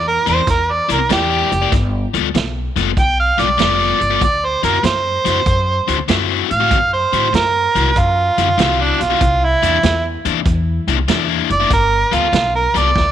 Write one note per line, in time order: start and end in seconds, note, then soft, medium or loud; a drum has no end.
0.00 0.17 E2 medium
0.08 0.27 A#4 loud
0.26 0.42 E2 medium
0.26 0.40 C4 medium
0.26 0.40 E4 medium
0.26 0.40 A#4 medium
0.26 0.48 C5 loud
0.26 0.40 D5 medium
0.26 closed hi-hat medium
0.47 0.79 E2 medium
0.47 0.73 A#4 medium
0.47 kick loud
0.47 snare soft
0.47 closed hi-hat medium
0.71 0.90 D5 medium
0.89 1.05 C2 medium
0.89 0.99 C4 medium
0.89 0.98 E4 medium
0.89 0.98 A#4 loud
0.89 1.13 A#4 medium
0.89 0.98 D5 medium
0.89 closed hi-hat medium
0.99 muted overdriven electric guitar stroke medium
1.09 1.42 E2 medium
1.09 1.30 C4 medium
1.09 1.30 E4 medium
1.09 1.71 G4 loud
1.09 1.30 A#4 medium
1.09 1.29 D5 medium
1.09 snare loud
1.09 closed hi-hat medium
1.30 1.50 C4 medium
1.30 1.51 E4 medium
1.30 1.51 A#4 medium
1.30 1.51 D5 medium
1.52 1.67 F1 medium
1.52 muted overdriven electric guitar stroke soft
1.52 closed hi-hat medium
1.62 1.73 C4 medium
1.62 1.72 E4 medium
1.62 1.72 A#4 medium
1.62 1.72 D5 medium
1.72 2.04 G1 medium
1.72 kick loud
1.72 snare soft
1.72 closed hi-hat medium
2.14 2.30 D2 medium
2.14 2.27 G3 medium
2.14 2.27 B3 medium
2.14 2.28 F4 medium
2.14 2.28 A4 medium
2.14 closed hi-hat medium
2.34 2.66 B1 medium
2.34 muted overdriven electric guitar stroke soft
2.34 snare loud
2.34 closed hi-hat medium
2.76 2.92 F1 medium
2.76 2.89 G3 medium
2.76 2.90 B3 medium
2.76 2.90 F4 medium
2.76 2.90 A4 medium
2.76 snare soft
2.76 closed hi-hat medium
2.97 3.29 B1 medium
2.97 3.18 G5 medium
2.97 kick loud
2.97 closed hi-hat medium
3.20 3.42 F5 medium
3.38 3.55 B1 medium
3.38 3.49 G3 medium
3.38 3.48 B3 medium
3.38 3.48 F4 medium
3.38 3.47 A4 loud
3.38 4.20 D5 medium
3.38 closed hi-hat medium
3.48 muted overdriven electric guitar stroke medium
3.58 3.91 F1 medium
3.58 3.79 G3 medium
3.58 3.79 B3 medium
3.58 3.78 F4 medium
3.58 3.78 A4 medium
3.58 snare loud
3.58 closed hi-hat medium
3.79 3.99 G3 medium
3.79 3.99 B3 medium
3.79 4.00 F4 medium
3.79 4.00 A4 medium
4.00 4.17 G1 medium
4.00 muted overdriven electric guitar stroke soft
4.00 closed hi-hat medium
4.10 4.22 G3 medium
4.10 4.21 B3 medium
4.10 4.21 F4 medium
4.10 4.21 A4 medium
4.21 4.53 D2 medium
4.21 4.46 D5 loud
4.21 kick loud
4.21 closed hi-hat medium
4.45 4.64 C5 medium
4.63 4.79 F#2 medium
4.63 4.76 D3 medium
4.63 4.77 C4 medium
4.63 4.77 E4 medium
4.63 4.77 F#4 medium
4.63 4.87 A#4 medium
4.63 closed hi-hat medium
4.83 5.15 F#2 medium
4.83 6.06 C5 loud
4.83 muted overdriven electric guitar stroke soft
4.83 snare loud
4.83 closed hi-hat medium
5.25 5.41 F#2 medium
5.25 5.39 D3 medium
5.25 5.39 C4 medium
5.25 5.39 E4 medium
5.25 5.39 F#4 medium
5.25 snare soft
5.25 closed hi-hat medium
5.46 5.78 F#2 loud
5.46 kick loud
5.46 closed hi-hat medium
5.87 6.04 D2 medium
5.87 5.98 D3 medium
5.87 5.98 C4 medium
5.87 5.98 E4 medium
5.87 5.97 F#4 loud
5.87 closed hi-hat medium
5.98 muted overdriven electric guitar stroke soft
6.08 6.41 F#2 medium
6.08 6.29 D3 medium
6.08 6.28 C4 medium
6.08 6.28 E4 medium
6.08 6.28 F#4 medium
6.08 snare loud
6.08 closed hi-hat medium
6.29 6.49 D3 medium
6.29 6.49 C4 medium
6.29 6.49 E4 medium
6.29 6.50 F#4 medium
6.50 6.67 A2 medium
6.50 6.92 F5 loud
6.50 muted overdriven electric guitar stroke soft
6.50 closed hi-hat medium
6.60 6.77 D3 medium
6.60 6.77 C4 medium
6.60 6.77 E4 medium
6.60 6.77 F#4 loud
6.71 7.03 F#2 medium
6.71 kick loud
6.71 closed hi-hat medium
6.93 7.33 C5 medium
7.13 7.28 A2 medium
7.13 7.26 D3 medium
7.13 7.26 C4 medium
7.13 7.27 E4 medium
7.13 7.27 F#4 medium
7.13 closed hi-hat medium
7.33 7.65 F#2 loud
7.33 8.00 A#4 loud
7.33 muted overdriven electric guitar stroke medium
7.33 snare loud
7.33 closed hi-hat medium
7.75 7.91 C2 medium
7.75 7.89 D3 medium
7.75 7.89 C4 medium
7.75 7.89 E4 medium
7.75 7.89 F#4 medium
7.75 closed hi-hat medium
7.96 8.28 F#2 medium
7.96 8.84 F4 loud
7.96 kick loud
7.96 closed hi-hat medium
8.38 8.54 F#2 medium
8.38 8.48 D3 medium
8.38 8.48 C4 medium
8.38 8.47 E4 loud
8.38 8.47 F#4 loud
8.38 closed hi-hat medium
8.48 muted overdriven electric guitar stroke soft
8.58 8.90 C2 medium
8.58 8.79 D3 medium
8.58 8.79 C4 medium
8.58 8.78 E4 medium
8.58 8.78 F#4 medium
8.58 snare loud
8.58 closed hi-hat medium
8.79 8.99 D3 medium
8.79 8.99 C4 medium
8.79 9.03 D4 medium
8.79 9.00 E4 medium
8.79 9.00 F#4 medium
9.00 9.16 B1 medium
9.00 9.46 F4 loud
9.00 muted overdriven electric guitar stroke soft
9.00 snare soft
9.00 closed hi-hat medium
9.10 9.21 D3 medium
9.10 9.21 C4 medium
9.10 9.21 E4 medium
9.10 9.21 F#4 loud
9.21 9.53 C2 medium
9.21 kick loud
9.21 closed hi-hat medium
9.44 10.04 E4 loud
9.62 9.79 E2 medium
9.62 9.76 C3 medium
9.62 9.76 A#3 medium
9.62 9.76 D4 medium
9.62 9.76 E4 medium
9.62 closed hi-hat medium
9.83 10.15 E2 medium
9.83 muted overdriven electric guitar stroke soft
9.83 snare loud
9.83 closed hi-hat medium
10.25 10.41 E2 medium
10.25 10.39 C3 medium
10.25 10.39 A#3 medium
10.25 10.39 D4 medium
10.25 10.39 E4 medium
10.25 closed hi-hat medium
10.45 10.78 E2 loud
10.45 kick loud
10.45 closed hi-hat medium
10.87 11.03 C2 medium
10.87 10.98 C3 medium
10.87 10.98 A#3 loud
10.87 10.97 D4 loud
10.87 10.97 E4 loud
10.87 closed hi-hat medium
10.98 muted overdriven electric guitar stroke medium
11.08 11.40 E2 medium
11.08 11.29 C3 medium
11.08 11.29 A#3 medium
11.08 11.28 D4 medium
11.08 11.28 E4 medium
11.08 snare loud
11.08 closed hi-hat medium
11.29 11.49 C3 medium
11.29 11.49 A#3 medium
11.29 11.49 D4 medium
11.29 11.49 E4 medium
11.50 11.66 F1 medium
11.50 11.71 D5 medium
11.50 muted overdriven electric guitar stroke soft
11.50 closed hi-hat medium
11.60 11.71 C3 medium
11.60 11.71 A#3 medium
11.60 11.71 D4 medium
11.60 11.70 E4 medium
11.70 12.03 G1 medium
11.70 12.16 A#4 loud
11.70 kick loud
11.70 snare soft
11.70 closed hi-hat medium
12.11 12.28 D2 medium
12.11 12.25 G3 medium
12.11 12.26 B3 medium
12.11 12.26 F4 medium
12.11 12.54 F4 medium
12.11 12.26 A4 medium
12.11 closed hi-hat medium
12.32 12.65 B1 loud
12.32 muted overdriven electric guitar stroke soft
12.32 snare loud
12.32 closed hi-hat medium
12.55 12.79 A#4 medium
12.74 12.91 C2 medium
12.74 12.88 G3 medium
12.74 12.88 B3 medium
12.74 12.88 F4 medium
12.74 12.89 A4 loud
12.74 13.12 D5 medium
12.74 closed hi-hat medium
12.96 13.12 D2 loud
12.96 kick loud
12.96 snare medium